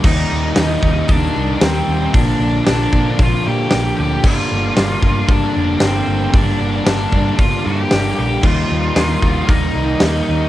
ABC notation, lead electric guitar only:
X:1
M:4/4
L:1/8
Q:1/4=114
K:Gm
V:1 name="Lead electric guitar"
[Ee]4 [Dd]2 [Cc]2 | [Dd]2 [Dd]2 [Ff] [Gg]2 [Gg] | [Ff]4 [Dd]2 [Cc]2 | [Dd]2 [Dd]2 [Ff] [Gg]2 [Gg] |
[Ff]4 [Ee]4 |]